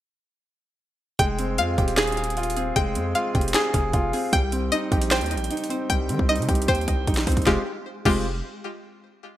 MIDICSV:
0, 0, Header, 1, 5, 480
1, 0, Start_track
1, 0, Key_signature, -4, "minor"
1, 0, Tempo, 392157
1, 1458, Time_signature, 4, 2, 24, 8
1, 11469, End_track
2, 0, Start_track
2, 0, Title_t, "Synth pluck"
2, 0, Program_c, 0, 84
2, 1459, Note_on_c, 0, 79, 112
2, 1939, Note_on_c, 0, 77, 106
2, 2420, Note_on_c, 0, 68, 99
2, 3363, Note_off_c, 0, 79, 0
2, 3378, Note_on_c, 0, 79, 108
2, 3843, Note_off_c, 0, 77, 0
2, 3857, Note_on_c, 0, 77, 92
2, 4324, Note_off_c, 0, 68, 0
2, 4339, Note_on_c, 0, 68, 98
2, 5283, Note_off_c, 0, 79, 0
2, 5297, Note_on_c, 0, 79, 110
2, 5298, Note_off_c, 0, 68, 0
2, 5298, Note_off_c, 0, 77, 0
2, 5776, Note_on_c, 0, 75, 98
2, 6259, Note_on_c, 0, 72, 97
2, 7203, Note_off_c, 0, 79, 0
2, 7218, Note_on_c, 0, 79, 114
2, 7684, Note_off_c, 0, 75, 0
2, 7699, Note_on_c, 0, 75, 106
2, 8165, Note_off_c, 0, 72, 0
2, 8180, Note_on_c, 0, 72, 97
2, 9138, Note_off_c, 0, 79, 0
2, 9139, Note_off_c, 0, 72, 0
2, 9139, Note_off_c, 0, 75, 0
2, 9139, Note_on_c, 0, 56, 90
2, 9139, Note_on_c, 0, 65, 81
2, 9139, Note_on_c, 0, 67, 95
2, 9273, Note_off_c, 0, 56, 0
2, 9273, Note_off_c, 0, 65, 0
2, 9273, Note_off_c, 0, 67, 0
2, 9858, Note_on_c, 0, 67, 96
2, 9859, Note_on_c, 0, 56, 88
2, 9859, Note_on_c, 0, 65, 78
2, 10082, Note_off_c, 0, 56, 0
2, 10082, Note_off_c, 0, 65, 0
2, 10082, Note_off_c, 0, 67, 0
2, 11469, End_track
3, 0, Start_track
3, 0, Title_t, "Grand piano"
3, 0, Program_c, 1, 0
3, 1462, Note_on_c, 1, 56, 96
3, 1699, Note_on_c, 1, 60, 86
3, 1718, Control_c, 1, 64, 127
3, 1938, Note_on_c, 1, 65, 88
3, 2176, Note_on_c, 1, 67, 87
3, 2421, Note_on_c, 1, 68, 105
3, 2660, Note_off_c, 1, 56, 0
3, 2887, Note_off_c, 1, 65, 0
3, 2899, Note_off_c, 1, 60, 0
3, 2905, Note_on_c, 1, 65, 93
3, 3139, Note_on_c, 1, 60, 81
3, 3377, Note_off_c, 1, 67, 0
3, 3382, Note_on_c, 1, 56, 107
3, 3602, Note_off_c, 1, 60, 0
3, 3620, Note_off_c, 1, 68, 0
3, 3620, Note_on_c, 1, 60, 84
3, 3838, Note_off_c, 1, 65, 0
3, 3857, Note_on_c, 1, 65, 91
3, 4099, Note_on_c, 1, 67, 80
3, 4344, Note_on_c, 1, 68, 106
3, 4580, Note_off_c, 1, 56, 0
3, 4799, Note_off_c, 1, 65, 0
3, 4818, Note_on_c, 1, 65, 99
3, 4819, Note_off_c, 1, 60, 0
3, 5055, Note_on_c, 1, 60, 78
3, 5295, Note_on_c, 1, 55, 91
3, 5297, Note_off_c, 1, 60, 0
3, 5298, Note_off_c, 1, 65, 0
3, 5299, Note_off_c, 1, 67, 0
3, 5301, Note_off_c, 1, 68, 0
3, 5316, Control_c, 1, 64, 0
3, 5537, Note_on_c, 1, 60, 81
3, 5563, Control_c, 1, 64, 127
3, 5777, Note_on_c, 1, 63, 94
3, 6019, Note_on_c, 1, 67, 85
3, 6258, Note_on_c, 1, 79, 106
3, 6497, Note_off_c, 1, 55, 0
3, 6723, Note_off_c, 1, 63, 0
3, 6738, Note_off_c, 1, 60, 0
3, 6742, Note_on_c, 1, 63, 90
3, 6972, Note_on_c, 1, 60, 84
3, 7214, Note_on_c, 1, 55, 95
3, 7219, Note_off_c, 1, 67, 0
3, 7439, Note_off_c, 1, 60, 0
3, 7457, Note_on_c, 1, 60, 86
3, 7458, Note_off_c, 1, 79, 0
3, 7683, Note_off_c, 1, 63, 0
3, 7702, Note_on_c, 1, 63, 85
3, 7944, Note_on_c, 1, 67, 87
3, 8177, Note_on_c, 1, 79, 106
3, 8416, Note_off_c, 1, 55, 0
3, 8637, Note_off_c, 1, 63, 0
3, 8656, Note_on_c, 1, 63, 85
3, 8658, Note_off_c, 1, 60, 0
3, 8906, Note_on_c, 1, 60, 78
3, 9120, Note_off_c, 1, 60, 0
3, 9120, Note_off_c, 1, 67, 0
3, 9137, Note_off_c, 1, 63, 0
3, 9138, Note_off_c, 1, 79, 0
3, 9138, Note_on_c, 1, 56, 90
3, 9138, Note_on_c, 1, 60, 81
3, 9138, Note_on_c, 1, 65, 81
3, 9138, Note_on_c, 1, 67, 97
3, 9153, Control_c, 1, 64, 0
3, 9272, Note_off_c, 1, 56, 0
3, 9272, Note_off_c, 1, 60, 0
3, 9272, Note_off_c, 1, 65, 0
3, 9272, Note_off_c, 1, 67, 0
3, 9859, Note_on_c, 1, 56, 82
3, 9859, Note_on_c, 1, 60, 76
3, 9859, Note_on_c, 1, 65, 76
3, 9859, Note_on_c, 1, 67, 90
3, 10082, Note_off_c, 1, 56, 0
3, 10082, Note_off_c, 1, 60, 0
3, 10082, Note_off_c, 1, 65, 0
3, 10082, Note_off_c, 1, 67, 0
3, 11469, End_track
4, 0, Start_track
4, 0, Title_t, "808-style bass"
4, 0, Program_c, 2, 38
4, 1459, Note_on_c, 2, 29, 112
4, 1938, Note_on_c, 2, 41, 99
4, 1956, Note_off_c, 2, 29, 0
4, 2166, Note_off_c, 2, 41, 0
4, 2179, Note_on_c, 2, 27, 109
4, 3331, Note_off_c, 2, 27, 0
4, 3378, Note_on_c, 2, 29, 109
4, 3618, Note_on_c, 2, 41, 103
4, 3636, Note_off_c, 2, 29, 0
4, 3846, Note_off_c, 2, 41, 0
4, 4098, Note_on_c, 2, 29, 109
4, 4329, Note_off_c, 2, 29, 0
4, 4578, Note_on_c, 2, 29, 104
4, 4808, Note_off_c, 2, 29, 0
4, 4817, Note_on_c, 2, 29, 110
4, 5048, Note_off_c, 2, 29, 0
4, 5298, Note_on_c, 2, 36, 111
4, 5759, Note_off_c, 2, 36, 0
4, 6018, Note_on_c, 2, 34, 113
4, 6379, Note_on_c, 2, 39, 102
4, 6397, Note_off_c, 2, 34, 0
4, 6558, Note_on_c, 2, 34, 102
4, 6577, Note_off_c, 2, 39, 0
4, 6729, Note_off_c, 2, 34, 0
4, 7219, Note_on_c, 2, 36, 107
4, 7459, Note_on_c, 2, 51, 102
4, 7478, Note_off_c, 2, 36, 0
4, 7573, Note_off_c, 2, 51, 0
4, 7579, Note_on_c, 2, 36, 108
4, 7819, Note_on_c, 2, 48, 103
4, 7837, Note_off_c, 2, 36, 0
4, 7933, Note_off_c, 2, 48, 0
4, 7939, Note_on_c, 2, 36, 112
4, 8169, Note_off_c, 2, 36, 0
4, 8179, Note_on_c, 2, 39, 110
4, 8409, Note_off_c, 2, 39, 0
4, 8419, Note_on_c, 2, 36, 109
4, 8649, Note_off_c, 2, 36, 0
4, 8659, Note_on_c, 2, 34, 110
4, 8889, Note_off_c, 2, 34, 0
4, 8898, Note_on_c, 2, 36, 110
4, 9129, Note_off_c, 2, 36, 0
4, 9138, Note_on_c, 2, 29, 113
4, 9272, Note_off_c, 2, 29, 0
4, 9858, Note_on_c, 2, 29, 111
4, 10305, Note_off_c, 2, 29, 0
4, 11469, End_track
5, 0, Start_track
5, 0, Title_t, "Drums"
5, 1458, Note_on_c, 9, 36, 124
5, 1458, Note_on_c, 9, 42, 90
5, 1581, Note_off_c, 9, 36, 0
5, 1581, Note_off_c, 9, 42, 0
5, 1696, Note_on_c, 9, 42, 83
5, 1818, Note_off_c, 9, 42, 0
5, 1936, Note_on_c, 9, 42, 81
5, 2058, Note_off_c, 9, 42, 0
5, 2178, Note_on_c, 9, 42, 49
5, 2179, Note_on_c, 9, 36, 106
5, 2298, Note_off_c, 9, 42, 0
5, 2298, Note_on_c, 9, 42, 84
5, 2301, Note_off_c, 9, 36, 0
5, 2417, Note_on_c, 9, 38, 117
5, 2418, Note_off_c, 9, 42, 0
5, 2418, Note_on_c, 9, 42, 58
5, 2432, Note_on_c, 9, 26, 92
5, 2478, Note_off_c, 9, 42, 0
5, 2478, Note_on_c, 9, 42, 59
5, 2539, Note_off_c, 9, 42, 0
5, 2539, Note_on_c, 9, 42, 61
5, 2540, Note_off_c, 9, 38, 0
5, 2554, Note_off_c, 9, 26, 0
5, 2599, Note_off_c, 9, 42, 0
5, 2599, Note_on_c, 9, 42, 60
5, 2658, Note_off_c, 9, 42, 0
5, 2658, Note_on_c, 9, 42, 66
5, 2738, Note_off_c, 9, 42, 0
5, 2738, Note_on_c, 9, 42, 66
5, 2818, Note_off_c, 9, 42, 0
5, 2818, Note_on_c, 9, 42, 66
5, 2898, Note_off_c, 9, 42, 0
5, 2898, Note_on_c, 9, 42, 67
5, 2978, Note_off_c, 9, 42, 0
5, 2978, Note_on_c, 9, 42, 67
5, 3058, Note_off_c, 9, 42, 0
5, 3058, Note_on_c, 9, 42, 64
5, 3140, Note_off_c, 9, 42, 0
5, 3140, Note_on_c, 9, 42, 74
5, 3262, Note_off_c, 9, 42, 0
5, 3378, Note_on_c, 9, 36, 124
5, 3378, Note_on_c, 9, 42, 90
5, 3501, Note_off_c, 9, 36, 0
5, 3501, Note_off_c, 9, 42, 0
5, 3615, Note_on_c, 9, 42, 84
5, 3737, Note_off_c, 9, 42, 0
5, 3855, Note_on_c, 9, 42, 74
5, 3978, Note_off_c, 9, 42, 0
5, 4098, Note_on_c, 9, 36, 108
5, 4098, Note_on_c, 9, 42, 49
5, 4178, Note_off_c, 9, 42, 0
5, 4178, Note_on_c, 9, 42, 66
5, 4221, Note_off_c, 9, 36, 0
5, 4258, Note_off_c, 9, 42, 0
5, 4258, Note_on_c, 9, 42, 85
5, 4337, Note_on_c, 9, 38, 121
5, 4338, Note_off_c, 9, 42, 0
5, 4338, Note_on_c, 9, 42, 68
5, 4351, Note_on_c, 9, 26, 95
5, 4459, Note_off_c, 9, 38, 0
5, 4460, Note_off_c, 9, 42, 0
5, 4474, Note_off_c, 9, 26, 0
5, 4577, Note_on_c, 9, 42, 86
5, 4578, Note_on_c, 9, 36, 95
5, 4700, Note_off_c, 9, 36, 0
5, 4700, Note_off_c, 9, 42, 0
5, 4815, Note_on_c, 9, 42, 79
5, 4817, Note_on_c, 9, 36, 96
5, 4938, Note_off_c, 9, 42, 0
5, 4939, Note_off_c, 9, 36, 0
5, 5059, Note_on_c, 9, 46, 79
5, 5182, Note_off_c, 9, 46, 0
5, 5298, Note_on_c, 9, 36, 126
5, 5298, Note_on_c, 9, 42, 91
5, 5420, Note_off_c, 9, 36, 0
5, 5420, Note_off_c, 9, 42, 0
5, 5536, Note_on_c, 9, 42, 85
5, 5658, Note_off_c, 9, 42, 0
5, 5776, Note_on_c, 9, 42, 82
5, 5898, Note_off_c, 9, 42, 0
5, 6018, Note_on_c, 9, 42, 50
5, 6019, Note_on_c, 9, 36, 105
5, 6139, Note_off_c, 9, 42, 0
5, 6139, Note_on_c, 9, 42, 81
5, 6141, Note_off_c, 9, 36, 0
5, 6258, Note_off_c, 9, 42, 0
5, 6258, Note_on_c, 9, 38, 116
5, 6258, Note_on_c, 9, 42, 61
5, 6272, Note_on_c, 9, 26, 93
5, 6318, Note_off_c, 9, 42, 0
5, 6318, Note_on_c, 9, 42, 60
5, 6379, Note_off_c, 9, 42, 0
5, 6379, Note_on_c, 9, 42, 60
5, 6380, Note_off_c, 9, 38, 0
5, 6395, Note_off_c, 9, 26, 0
5, 6439, Note_off_c, 9, 42, 0
5, 6439, Note_on_c, 9, 42, 60
5, 6499, Note_off_c, 9, 42, 0
5, 6499, Note_on_c, 9, 42, 67
5, 6579, Note_off_c, 9, 42, 0
5, 6579, Note_on_c, 9, 42, 67
5, 6659, Note_off_c, 9, 42, 0
5, 6659, Note_on_c, 9, 42, 66
5, 6738, Note_off_c, 9, 42, 0
5, 6738, Note_on_c, 9, 42, 69
5, 6819, Note_off_c, 9, 42, 0
5, 6819, Note_on_c, 9, 42, 65
5, 6899, Note_off_c, 9, 42, 0
5, 6899, Note_on_c, 9, 42, 64
5, 6981, Note_off_c, 9, 42, 0
5, 6981, Note_on_c, 9, 42, 73
5, 7103, Note_off_c, 9, 42, 0
5, 7219, Note_on_c, 9, 36, 126
5, 7219, Note_on_c, 9, 42, 89
5, 7341, Note_off_c, 9, 36, 0
5, 7342, Note_off_c, 9, 42, 0
5, 7456, Note_on_c, 9, 42, 84
5, 7579, Note_off_c, 9, 42, 0
5, 7579, Note_on_c, 9, 36, 101
5, 7699, Note_on_c, 9, 42, 47
5, 7702, Note_off_c, 9, 36, 0
5, 7779, Note_off_c, 9, 42, 0
5, 7779, Note_on_c, 9, 42, 53
5, 7859, Note_off_c, 9, 42, 0
5, 7859, Note_on_c, 9, 42, 58
5, 7939, Note_off_c, 9, 42, 0
5, 7939, Note_on_c, 9, 36, 107
5, 7939, Note_on_c, 9, 42, 69
5, 8019, Note_off_c, 9, 42, 0
5, 8019, Note_on_c, 9, 42, 74
5, 8062, Note_off_c, 9, 36, 0
5, 8099, Note_off_c, 9, 42, 0
5, 8099, Note_on_c, 9, 42, 79
5, 8179, Note_off_c, 9, 42, 0
5, 8179, Note_on_c, 9, 36, 64
5, 8179, Note_on_c, 9, 42, 72
5, 8259, Note_off_c, 9, 42, 0
5, 8259, Note_on_c, 9, 42, 56
5, 8301, Note_off_c, 9, 36, 0
5, 8339, Note_off_c, 9, 42, 0
5, 8339, Note_on_c, 9, 42, 42
5, 8419, Note_off_c, 9, 42, 0
5, 8419, Note_on_c, 9, 36, 82
5, 8419, Note_on_c, 9, 42, 84
5, 8541, Note_off_c, 9, 36, 0
5, 8541, Note_off_c, 9, 42, 0
5, 8659, Note_on_c, 9, 36, 99
5, 8659, Note_on_c, 9, 42, 77
5, 8739, Note_off_c, 9, 42, 0
5, 8739, Note_on_c, 9, 42, 61
5, 8779, Note_on_c, 9, 38, 85
5, 8781, Note_off_c, 9, 36, 0
5, 8818, Note_off_c, 9, 42, 0
5, 8818, Note_on_c, 9, 42, 44
5, 8898, Note_off_c, 9, 42, 0
5, 8898, Note_on_c, 9, 36, 110
5, 8898, Note_on_c, 9, 42, 74
5, 8900, Note_on_c, 9, 46, 83
5, 8901, Note_off_c, 9, 38, 0
5, 8958, Note_off_c, 9, 42, 0
5, 8958, Note_on_c, 9, 42, 66
5, 9018, Note_off_c, 9, 36, 0
5, 9018, Note_off_c, 9, 42, 0
5, 9018, Note_on_c, 9, 36, 99
5, 9018, Note_on_c, 9, 42, 55
5, 9022, Note_off_c, 9, 46, 0
5, 9078, Note_off_c, 9, 42, 0
5, 9078, Note_on_c, 9, 42, 47
5, 9138, Note_off_c, 9, 36, 0
5, 9138, Note_on_c, 9, 36, 112
5, 9138, Note_on_c, 9, 38, 88
5, 9201, Note_off_c, 9, 42, 0
5, 9260, Note_off_c, 9, 38, 0
5, 9261, Note_off_c, 9, 36, 0
5, 9858, Note_on_c, 9, 36, 111
5, 9858, Note_on_c, 9, 49, 92
5, 9980, Note_off_c, 9, 36, 0
5, 9980, Note_off_c, 9, 49, 0
5, 11469, End_track
0, 0, End_of_file